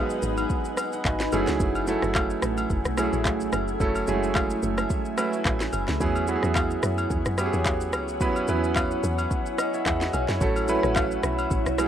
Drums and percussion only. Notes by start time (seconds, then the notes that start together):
0.10 shaker
0.22 shaker
0.37 high agogo, shaker
0.50 kick, shaker
0.65 shaker
0.77 cross-stick, high agogo, shaker
0.93 shaker
1.05 kick, clap, low woodblock, shaker
1.20 snare, shaker
1.32 high agogo, shaker
1.47 snare, shaker
1.60 kick, shaker
1.75 high agogo, shaker
1.87 shaker
2.02 cross-stick, shaker
2.15 kick, clap, high agogo, low woodblock, shaker
2.30 shaker
2.42 cross-stick, shaker
2.58 high agogo, shaker
2.70 kick, shaker
2.85 cross-stick, shaker
2.97 cross-stick, high agogo, shaker
3.13 shaker
3.25 kick, clap, low woodblock, shaker
3.40 shaker
3.52 cross-stick, high agogo, shaker
3.68 shaker
3.80 kick, shaker
3.95 high agogo, shaker
4.07 shaker
4.23 shaker
4.35 kick, clap, high agogo, low woodblock, shaker
4.50 shaker
4.63 shaker
4.78 cross-stick, high agogo, shaker
4.90 kick, shaker
5.05 shaker
5.18 cross-stick, high agogo, shaker
5.33 shaker
5.45 kick, clap, low woodblock, shaker
5.60 snare, shaker
5.73 high agogo, shaker
5.88 snare, shaker
6.01 kick, shaker
6.16 high agogo, shaker
6.27 shaker
6.43 cross-stick, shaker
6.55 kick, clap, high agogo, low woodblock, shaker
6.71 shaker
6.83 cross-stick, shaker
6.98 high agogo, shaker
7.10 kick, shaker
7.25 cross-stick, shaker
7.38 cross-stick, high agogo, shaker
7.53 shaker
7.65 kick, clap, low woodblock, shaker
7.81 shaker
7.93 cross-stick, high agogo, shaker
8.08 shaker
8.21 kick, shaker
8.36 high agogo, shaker
8.48 shaker
8.64 shaker
8.76 kick, clap, high agogo, low woodblock, shaker
8.91 shaker
9.03 shaker
9.18 high agogo, shaker
9.31 kick, shaker
9.46 shaker
9.58 cross-stick, high agogo, shaker
9.74 shaker
9.86 kick, clap, low woodblock, shaker
10.01 snare, shaker
10.13 high agogo, shaker
10.29 snare, shaker
10.41 kick, shaker
10.56 high agogo, shaker
10.68 shaker
10.83 cross-stick, shaker
10.96 kick, clap, high agogo, low woodblock, shaker
11.11 shaker
11.23 cross-stick, shaker
11.39 high agogo, shaker
11.51 kick, shaker
11.66 cross-stick, shaker
11.78 cross-stick, high agogo, shaker